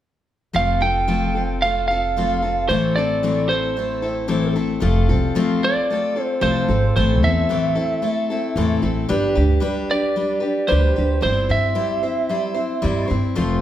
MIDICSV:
0, 0, Header, 1, 4, 480
1, 0, Start_track
1, 0, Tempo, 533808
1, 496, Time_signature, 4, 2, 24, 8
1, 12242, End_track
2, 0, Start_track
2, 0, Title_t, "Lead electric guitar"
2, 0, Program_c, 0, 29
2, 504, Note_on_c, 0, 77, 78
2, 736, Note_on_c, 0, 79, 91
2, 747, Note_off_c, 0, 77, 0
2, 1420, Note_off_c, 0, 79, 0
2, 1458, Note_on_c, 0, 77, 87
2, 1678, Note_off_c, 0, 77, 0
2, 1689, Note_on_c, 0, 77, 85
2, 2417, Note_on_c, 0, 72, 69
2, 2435, Note_off_c, 0, 77, 0
2, 2658, Note_on_c, 0, 74, 89
2, 2664, Note_off_c, 0, 72, 0
2, 3139, Note_on_c, 0, 72, 75
2, 3152, Note_off_c, 0, 74, 0
2, 4062, Note_off_c, 0, 72, 0
2, 5076, Note_on_c, 0, 74, 78
2, 5606, Note_off_c, 0, 74, 0
2, 5606, Note_on_c, 0, 72, 78
2, 5778, Note_off_c, 0, 72, 0
2, 5778, Note_on_c, 0, 72, 77
2, 6252, Note_off_c, 0, 72, 0
2, 6263, Note_on_c, 0, 72, 67
2, 6507, Note_off_c, 0, 72, 0
2, 6511, Note_on_c, 0, 76, 85
2, 7908, Note_off_c, 0, 76, 0
2, 8910, Note_on_c, 0, 74, 82
2, 9610, Note_on_c, 0, 72, 75
2, 9645, Note_off_c, 0, 74, 0
2, 10089, Note_off_c, 0, 72, 0
2, 10100, Note_on_c, 0, 72, 76
2, 10346, Note_off_c, 0, 72, 0
2, 10353, Note_on_c, 0, 76, 97
2, 11750, Note_off_c, 0, 76, 0
2, 12242, End_track
3, 0, Start_track
3, 0, Title_t, "Steel-string acoustic guitar"
3, 0, Program_c, 1, 25
3, 480, Note_on_c, 1, 53, 64
3, 481, Note_on_c, 1, 57, 68
3, 484, Note_on_c, 1, 65, 60
3, 486, Note_on_c, 1, 60, 74
3, 492, Note_on_c, 1, 69, 77
3, 714, Note_off_c, 1, 69, 0
3, 725, Note_on_c, 1, 69, 44
3, 727, Note_off_c, 1, 65, 0
3, 728, Note_off_c, 1, 53, 0
3, 728, Note_off_c, 1, 57, 0
3, 731, Note_off_c, 1, 60, 0
3, 738, Note_on_c, 1, 65, 46
3, 745, Note_on_c, 1, 60, 40
3, 962, Note_off_c, 1, 60, 0
3, 962, Note_off_c, 1, 65, 0
3, 964, Note_off_c, 1, 69, 0
3, 968, Note_on_c, 1, 53, 69
3, 970, Note_on_c, 1, 57, 64
3, 973, Note_on_c, 1, 60, 74
3, 973, Note_on_c, 1, 65, 75
3, 975, Note_on_c, 1, 69, 68
3, 1200, Note_off_c, 1, 69, 0
3, 1211, Note_on_c, 1, 69, 43
3, 1212, Note_off_c, 1, 53, 0
3, 1213, Note_off_c, 1, 57, 0
3, 1213, Note_off_c, 1, 65, 0
3, 1215, Note_off_c, 1, 60, 0
3, 1224, Note_on_c, 1, 65, 39
3, 1233, Note_on_c, 1, 60, 41
3, 1454, Note_off_c, 1, 69, 0
3, 1455, Note_off_c, 1, 60, 0
3, 1457, Note_off_c, 1, 65, 0
3, 1463, Note_on_c, 1, 57, 51
3, 1466, Note_on_c, 1, 60, 54
3, 1468, Note_on_c, 1, 65, 53
3, 1477, Note_on_c, 1, 69, 64
3, 1700, Note_off_c, 1, 57, 0
3, 1701, Note_off_c, 1, 60, 0
3, 1702, Note_off_c, 1, 65, 0
3, 1702, Note_off_c, 1, 69, 0
3, 1713, Note_on_c, 1, 69, 45
3, 1718, Note_on_c, 1, 65, 40
3, 1724, Note_on_c, 1, 60, 36
3, 1945, Note_off_c, 1, 65, 0
3, 1945, Note_off_c, 1, 69, 0
3, 1947, Note_on_c, 1, 53, 64
3, 1950, Note_off_c, 1, 60, 0
3, 1952, Note_on_c, 1, 57, 64
3, 1956, Note_on_c, 1, 65, 71
3, 1960, Note_on_c, 1, 60, 69
3, 1960, Note_on_c, 1, 69, 80
3, 2169, Note_off_c, 1, 69, 0
3, 2180, Note_on_c, 1, 69, 50
3, 2182, Note_off_c, 1, 53, 0
3, 2185, Note_off_c, 1, 57, 0
3, 2186, Note_off_c, 1, 65, 0
3, 2188, Note_off_c, 1, 60, 0
3, 2198, Note_on_c, 1, 65, 43
3, 2199, Note_on_c, 1, 60, 45
3, 2418, Note_off_c, 1, 60, 0
3, 2418, Note_off_c, 1, 69, 0
3, 2419, Note_on_c, 1, 45, 69
3, 2423, Note_on_c, 1, 52, 76
3, 2427, Note_off_c, 1, 65, 0
3, 2429, Note_on_c, 1, 60, 64
3, 2434, Note_on_c, 1, 57, 77
3, 2434, Note_on_c, 1, 64, 82
3, 2434, Note_on_c, 1, 69, 72
3, 2658, Note_off_c, 1, 45, 0
3, 2660, Note_off_c, 1, 52, 0
3, 2662, Note_off_c, 1, 69, 0
3, 2663, Note_off_c, 1, 60, 0
3, 2665, Note_off_c, 1, 57, 0
3, 2666, Note_off_c, 1, 64, 0
3, 2673, Note_on_c, 1, 69, 51
3, 2681, Note_on_c, 1, 60, 44
3, 2682, Note_on_c, 1, 64, 48
3, 2683, Note_on_c, 1, 57, 40
3, 2900, Note_off_c, 1, 57, 0
3, 2902, Note_off_c, 1, 64, 0
3, 2904, Note_off_c, 1, 60, 0
3, 2904, Note_on_c, 1, 52, 76
3, 2905, Note_off_c, 1, 69, 0
3, 2906, Note_on_c, 1, 45, 60
3, 2911, Note_on_c, 1, 57, 68
3, 2912, Note_on_c, 1, 64, 75
3, 2915, Note_on_c, 1, 60, 70
3, 2915, Note_on_c, 1, 69, 80
3, 3137, Note_off_c, 1, 69, 0
3, 3140, Note_off_c, 1, 52, 0
3, 3141, Note_off_c, 1, 45, 0
3, 3142, Note_off_c, 1, 64, 0
3, 3143, Note_off_c, 1, 60, 0
3, 3144, Note_off_c, 1, 57, 0
3, 3148, Note_on_c, 1, 69, 46
3, 3153, Note_on_c, 1, 64, 46
3, 3154, Note_on_c, 1, 60, 43
3, 3168, Note_on_c, 1, 57, 37
3, 3375, Note_off_c, 1, 57, 0
3, 3379, Note_off_c, 1, 60, 0
3, 3382, Note_off_c, 1, 69, 0
3, 3385, Note_off_c, 1, 64, 0
3, 3386, Note_on_c, 1, 57, 51
3, 3390, Note_on_c, 1, 60, 57
3, 3404, Note_on_c, 1, 64, 61
3, 3405, Note_on_c, 1, 69, 55
3, 3604, Note_off_c, 1, 69, 0
3, 3609, Note_off_c, 1, 64, 0
3, 3615, Note_on_c, 1, 69, 49
3, 3620, Note_on_c, 1, 64, 44
3, 3621, Note_off_c, 1, 57, 0
3, 3621, Note_off_c, 1, 60, 0
3, 3631, Note_on_c, 1, 57, 38
3, 3632, Note_on_c, 1, 60, 35
3, 3838, Note_off_c, 1, 57, 0
3, 3842, Note_off_c, 1, 60, 0
3, 3842, Note_off_c, 1, 64, 0
3, 3846, Note_on_c, 1, 45, 73
3, 3848, Note_off_c, 1, 69, 0
3, 3849, Note_on_c, 1, 57, 75
3, 3851, Note_on_c, 1, 52, 77
3, 3852, Note_on_c, 1, 60, 70
3, 3853, Note_on_c, 1, 64, 88
3, 3859, Note_on_c, 1, 69, 84
3, 4085, Note_off_c, 1, 64, 0
3, 4088, Note_off_c, 1, 69, 0
3, 4092, Note_off_c, 1, 45, 0
3, 4093, Note_off_c, 1, 57, 0
3, 4094, Note_off_c, 1, 52, 0
3, 4095, Note_off_c, 1, 60, 0
3, 4096, Note_on_c, 1, 64, 56
3, 4099, Note_on_c, 1, 69, 65
3, 4104, Note_on_c, 1, 60, 47
3, 4107, Note_on_c, 1, 57, 51
3, 4318, Note_off_c, 1, 57, 0
3, 4318, Note_on_c, 1, 53, 72
3, 4322, Note_off_c, 1, 60, 0
3, 4324, Note_off_c, 1, 69, 0
3, 4328, Note_on_c, 1, 57, 79
3, 4331, Note_off_c, 1, 64, 0
3, 4333, Note_on_c, 1, 60, 80
3, 4334, Note_on_c, 1, 69, 95
3, 4335, Note_on_c, 1, 65, 91
3, 4566, Note_off_c, 1, 69, 0
3, 4568, Note_off_c, 1, 53, 0
3, 4569, Note_off_c, 1, 65, 0
3, 4573, Note_off_c, 1, 57, 0
3, 4575, Note_off_c, 1, 60, 0
3, 4577, Note_on_c, 1, 69, 60
3, 4579, Note_on_c, 1, 65, 53
3, 4588, Note_on_c, 1, 60, 51
3, 4808, Note_off_c, 1, 65, 0
3, 4809, Note_off_c, 1, 60, 0
3, 4811, Note_on_c, 1, 53, 78
3, 4817, Note_off_c, 1, 69, 0
3, 4818, Note_on_c, 1, 57, 87
3, 4819, Note_on_c, 1, 65, 87
3, 4820, Note_on_c, 1, 60, 96
3, 4827, Note_on_c, 1, 69, 85
3, 5050, Note_off_c, 1, 69, 0
3, 5054, Note_off_c, 1, 53, 0
3, 5058, Note_off_c, 1, 57, 0
3, 5058, Note_off_c, 1, 60, 0
3, 5058, Note_off_c, 1, 65, 0
3, 5061, Note_on_c, 1, 69, 45
3, 5072, Note_on_c, 1, 65, 39
3, 5074, Note_on_c, 1, 60, 37
3, 5299, Note_off_c, 1, 69, 0
3, 5304, Note_off_c, 1, 65, 0
3, 5305, Note_off_c, 1, 60, 0
3, 5309, Note_on_c, 1, 57, 55
3, 5317, Note_on_c, 1, 60, 55
3, 5323, Note_on_c, 1, 65, 59
3, 5328, Note_on_c, 1, 69, 66
3, 5524, Note_off_c, 1, 69, 0
3, 5531, Note_off_c, 1, 65, 0
3, 5535, Note_on_c, 1, 69, 38
3, 5538, Note_off_c, 1, 60, 0
3, 5541, Note_on_c, 1, 65, 38
3, 5543, Note_off_c, 1, 57, 0
3, 5549, Note_on_c, 1, 60, 39
3, 5755, Note_off_c, 1, 60, 0
3, 5756, Note_off_c, 1, 65, 0
3, 5762, Note_off_c, 1, 69, 0
3, 5766, Note_on_c, 1, 53, 67
3, 5766, Note_on_c, 1, 60, 75
3, 5767, Note_on_c, 1, 57, 69
3, 5767, Note_on_c, 1, 65, 79
3, 5773, Note_on_c, 1, 69, 81
3, 6007, Note_off_c, 1, 69, 0
3, 6011, Note_off_c, 1, 53, 0
3, 6011, Note_off_c, 1, 60, 0
3, 6012, Note_off_c, 1, 57, 0
3, 6012, Note_off_c, 1, 65, 0
3, 6018, Note_on_c, 1, 69, 49
3, 6022, Note_on_c, 1, 65, 48
3, 6029, Note_on_c, 1, 60, 43
3, 6257, Note_off_c, 1, 69, 0
3, 6259, Note_off_c, 1, 65, 0
3, 6259, Note_on_c, 1, 52, 73
3, 6261, Note_off_c, 1, 60, 0
3, 6263, Note_on_c, 1, 45, 66
3, 6266, Note_on_c, 1, 57, 68
3, 6267, Note_on_c, 1, 69, 83
3, 6269, Note_on_c, 1, 64, 80
3, 6272, Note_on_c, 1, 60, 72
3, 6491, Note_off_c, 1, 69, 0
3, 6496, Note_off_c, 1, 64, 0
3, 6498, Note_off_c, 1, 52, 0
3, 6500, Note_off_c, 1, 45, 0
3, 6501, Note_off_c, 1, 57, 0
3, 6502, Note_on_c, 1, 69, 52
3, 6504, Note_off_c, 1, 60, 0
3, 6507, Note_on_c, 1, 64, 50
3, 6520, Note_on_c, 1, 57, 38
3, 6520, Note_on_c, 1, 60, 45
3, 6735, Note_off_c, 1, 57, 0
3, 6736, Note_on_c, 1, 45, 74
3, 6739, Note_off_c, 1, 64, 0
3, 6740, Note_off_c, 1, 69, 0
3, 6741, Note_off_c, 1, 60, 0
3, 6743, Note_on_c, 1, 52, 72
3, 6746, Note_on_c, 1, 57, 65
3, 6750, Note_on_c, 1, 64, 76
3, 6751, Note_on_c, 1, 60, 78
3, 6753, Note_on_c, 1, 69, 72
3, 6960, Note_off_c, 1, 64, 0
3, 6961, Note_off_c, 1, 69, 0
3, 6971, Note_on_c, 1, 64, 49
3, 6972, Note_on_c, 1, 69, 51
3, 6974, Note_off_c, 1, 60, 0
3, 6976, Note_off_c, 1, 45, 0
3, 6977, Note_off_c, 1, 57, 0
3, 6980, Note_off_c, 1, 52, 0
3, 6985, Note_on_c, 1, 60, 48
3, 6988, Note_on_c, 1, 57, 43
3, 7201, Note_off_c, 1, 57, 0
3, 7207, Note_off_c, 1, 60, 0
3, 7208, Note_off_c, 1, 64, 0
3, 7212, Note_on_c, 1, 57, 63
3, 7214, Note_off_c, 1, 69, 0
3, 7218, Note_on_c, 1, 60, 67
3, 7219, Note_on_c, 1, 64, 61
3, 7229, Note_on_c, 1, 69, 70
3, 7452, Note_off_c, 1, 69, 0
3, 7454, Note_off_c, 1, 57, 0
3, 7457, Note_off_c, 1, 60, 0
3, 7458, Note_off_c, 1, 64, 0
3, 7463, Note_on_c, 1, 69, 53
3, 7474, Note_on_c, 1, 64, 50
3, 7476, Note_on_c, 1, 60, 45
3, 7479, Note_on_c, 1, 57, 50
3, 7694, Note_off_c, 1, 60, 0
3, 7697, Note_off_c, 1, 57, 0
3, 7700, Note_off_c, 1, 69, 0
3, 7704, Note_on_c, 1, 52, 78
3, 7705, Note_off_c, 1, 64, 0
3, 7705, Note_on_c, 1, 60, 83
3, 7708, Note_on_c, 1, 45, 75
3, 7708, Note_on_c, 1, 57, 78
3, 7712, Note_on_c, 1, 69, 92
3, 7715, Note_on_c, 1, 64, 89
3, 7919, Note_off_c, 1, 69, 0
3, 7925, Note_off_c, 1, 64, 0
3, 7929, Note_off_c, 1, 57, 0
3, 7930, Note_on_c, 1, 69, 55
3, 7935, Note_off_c, 1, 60, 0
3, 7936, Note_on_c, 1, 64, 51
3, 7940, Note_off_c, 1, 52, 0
3, 7940, Note_on_c, 1, 57, 50
3, 7942, Note_off_c, 1, 45, 0
3, 7945, Note_on_c, 1, 60, 51
3, 8166, Note_off_c, 1, 57, 0
3, 8169, Note_off_c, 1, 60, 0
3, 8169, Note_on_c, 1, 55, 75
3, 8171, Note_off_c, 1, 64, 0
3, 8173, Note_off_c, 1, 69, 0
3, 8173, Note_on_c, 1, 62, 94
3, 8175, Note_on_c, 1, 67, 87
3, 8179, Note_on_c, 1, 71, 81
3, 8400, Note_off_c, 1, 71, 0
3, 8401, Note_off_c, 1, 67, 0
3, 8411, Note_on_c, 1, 67, 59
3, 8411, Note_on_c, 1, 71, 56
3, 8413, Note_off_c, 1, 55, 0
3, 8413, Note_off_c, 1, 62, 0
3, 8424, Note_on_c, 1, 62, 47
3, 8631, Note_off_c, 1, 62, 0
3, 8634, Note_on_c, 1, 55, 80
3, 8639, Note_off_c, 1, 71, 0
3, 8641, Note_off_c, 1, 67, 0
3, 8642, Note_on_c, 1, 62, 81
3, 8649, Note_on_c, 1, 71, 96
3, 8652, Note_on_c, 1, 67, 78
3, 8886, Note_off_c, 1, 55, 0
3, 8890, Note_off_c, 1, 62, 0
3, 8893, Note_off_c, 1, 71, 0
3, 8894, Note_off_c, 1, 67, 0
3, 8903, Note_on_c, 1, 71, 54
3, 8908, Note_on_c, 1, 67, 42
3, 8915, Note_on_c, 1, 62, 38
3, 9129, Note_off_c, 1, 67, 0
3, 9135, Note_off_c, 1, 62, 0
3, 9135, Note_off_c, 1, 71, 0
3, 9135, Note_on_c, 1, 55, 60
3, 9139, Note_on_c, 1, 67, 61
3, 9146, Note_on_c, 1, 62, 56
3, 9146, Note_on_c, 1, 71, 56
3, 9342, Note_off_c, 1, 71, 0
3, 9353, Note_on_c, 1, 71, 49
3, 9359, Note_off_c, 1, 67, 0
3, 9366, Note_off_c, 1, 62, 0
3, 9370, Note_on_c, 1, 67, 42
3, 9376, Note_off_c, 1, 55, 0
3, 9377, Note_on_c, 1, 62, 38
3, 9590, Note_off_c, 1, 62, 0
3, 9594, Note_off_c, 1, 67, 0
3, 9601, Note_on_c, 1, 55, 64
3, 9601, Note_on_c, 1, 62, 70
3, 9603, Note_off_c, 1, 71, 0
3, 9605, Note_on_c, 1, 67, 70
3, 9614, Note_on_c, 1, 71, 83
3, 9843, Note_off_c, 1, 71, 0
3, 9849, Note_off_c, 1, 55, 0
3, 9849, Note_off_c, 1, 62, 0
3, 9851, Note_off_c, 1, 67, 0
3, 9854, Note_on_c, 1, 71, 53
3, 9863, Note_on_c, 1, 67, 44
3, 9870, Note_on_c, 1, 62, 40
3, 10078, Note_on_c, 1, 55, 70
3, 10086, Note_off_c, 1, 62, 0
3, 10088, Note_off_c, 1, 71, 0
3, 10089, Note_off_c, 1, 67, 0
3, 10089, Note_on_c, 1, 60, 64
3, 10092, Note_on_c, 1, 72, 82
3, 10093, Note_on_c, 1, 64, 72
3, 10323, Note_off_c, 1, 72, 0
3, 10328, Note_off_c, 1, 55, 0
3, 10333, Note_off_c, 1, 60, 0
3, 10334, Note_on_c, 1, 72, 52
3, 10335, Note_off_c, 1, 64, 0
3, 10346, Note_on_c, 1, 64, 46
3, 10356, Note_on_c, 1, 60, 38
3, 10554, Note_off_c, 1, 60, 0
3, 10557, Note_off_c, 1, 64, 0
3, 10561, Note_off_c, 1, 72, 0
3, 10565, Note_on_c, 1, 60, 68
3, 10567, Note_on_c, 1, 55, 71
3, 10568, Note_on_c, 1, 64, 76
3, 10572, Note_on_c, 1, 72, 78
3, 10804, Note_off_c, 1, 72, 0
3, 10809, Note_off_c, 1, 64, 0
3, 10811, Note_off_c, 1, 60, 0
3, 10813, Note_off_c, 1, 55, 0
3, 10814, Note_on_c, 1, 72, 51
3, 10820, Note_on_c, 1, 64, 42
3, 10823, Note_on_c, 1, 60, 42
3, 11047, Note_off_c, 1, 60, 0
3, 11052, Note_off_c, 1, 64, 0
3, 11054, Note_off_c, 1, 72, 0
3, 11054, Note_on_c, 1, 55, 61
3, 11058, Note_on_c, 1, 60, 68
3, 11063, Note_on_c, 1, 64, 73
3, 11065, Note_on_c, 1, 72, 65
3, 11269, Note_off_c, 1, 72, 0
3, 11279, Note_off_c, 1, 64, 0
3, 11280, Note_on_c, 1, 72, 57
3, 11282, Note_off_c, 1, 60, 0
3, 11290, Note_on_c, 1, 64, 42
3, 11293, Note_on_c, 1, 60, 39
3, 11296, Note_off_c, 1, 55, 0
3, 11515, Note_off_c, 1, 60, 0
3, 11518, Note_off_c, 1, 64, 0
3, 11526, Note_on_c, 1, 55, 80
3, 11526, Note_on_c, 1, 60, 75
3, 11529, Note_off_c, 1, 72, 0
3, 11529, Note_on_c, 1, 64, 83
3, 11542, Note_on_c, 1, 72, 82
3, 11748, Note_off_c, 1, 72, 0
3, 11759, Note_on_c, 1, 72, 56
3, 11763, Note_off_c, 1, 64, 0
3, 11767, Note_off_c, 1, 60, 0
3, 11772, Note_off_c, 1, 55, 0
3, 11773, Note_on_c, 1, 64, 53
3, 11778, Note_on_c, 1, 60, 45
3, 12001, Note_off_c, 1, 60, 0
3, 12004, Note_off_c, 1, 72, 0
3, 12009, Note_on_c, 1, 53, 78
3, 12012, Note_on_c, 1, 60, 91
3, 12014, Note_on_c, 1, 57, 84
3, 12015, Note_on_c, 1, 72, 97
3, 12016, Note_off_c, 1, 64, 0
3, 12022, Note_on_c, 1, 65, 89
3, 12242, Note_off_c, 1, 53, 0
3, 12242, Note_off_c, 1, 57, 0
3, 12242, Note_off_c, 1, 60, 0
3, 12242, Note_off_c, 1, 65, 0
3, 12242, Note_off_c, 1, 72, 0
3, 12242, End_track
4, 0, Start_track
4, 0, Title_t, "Upright bass"
4, 0, Program_c, 2, 32
4, 496, Note_on_c, 2, 29, 71
4, 2381, Note_off_c, 2, 29, 0
4, 2427, Note_on_c, 2, 33, 76
4, 4306, Note_off_c, 2, 33, 0
4, 4336, Note_on_c, 2, 29, 94
4, 4575, Note_on_c, 2, 36, 87
4, 4589, Note_off_c, 2, 29, 0
4, 4761, Note_off_c, 2, 36, 0
4, 5780, Note_on_c, 2, 36, 90
4, 5964, Note_off_c, 2, 36, 0
4, 6010, Note_on_c, 2, 32, 90
4, 6198, Note_off_c, 2, 32, 0
4, 6261, Note_on_c, 2, 33, 93
4, 6497, Note_off_c, 2, 33, 0
4, 6497, Note_on_c, 2, 40, 79
4, 6682, Note_off_c, 2, 40, 0
4, 7695, Note_on_c, 2, 40, 92
4, 7881, Note_off_c, 2, 40, 0
4, 7937, Note_on_c, 2, 33, 84
4, 8123, Note_off_c, 2, 33, 0
4, 8185, Note_on_c, 2, 31, 87
4, 8426, Note_on_c, 2, 38, 83
4, 8440, Note_off_c, 2, 31, 0
4, 8608, Note_off_c, 2, 38, 0
4, 9634, Note_on_c, 2, 38, 89
4, 9813, Note_off_c, 2, 38, 0
4, 9876, Note_on_c, 2, 38, 82
4, 10054, Note_off_c, 2, 38, 0
4, 10106, Note_on_c, 2, 31, 81
4, 10340, Note_on_c, 2, 43, 88
4, 10354, Note_off_c, 2, 31, 0
4, 10525, Note_off_c, 2, 43, 0
4, 11548, Note_on_c, 2, 43, 94
4, 11730, Note_off_c, 2, 43, 0
4, 11788, Note_on_c, 2, 43, 87
4, 11970, Note_off_c, 2, 43, 0
4, 12029, Note_on_c, 2, 29, 86
4, 12242, Note_off_c, 2, 29, 0
4, 12242, End_track
0, 0, End_of_file